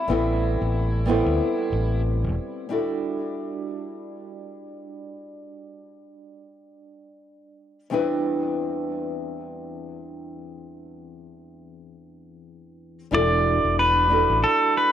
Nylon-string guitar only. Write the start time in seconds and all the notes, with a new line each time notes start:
0.08 G3 B3 C4 E4 A4
1.06 G3 B3 C4 E4 A4
2.69 G3 D4 E4 F#4 A4
7.90 E2 G3 C4 D4 E4 B4
13.11 G3 D4 E4 F#4 A4
14.09 G3 D4 E4 F#4 A4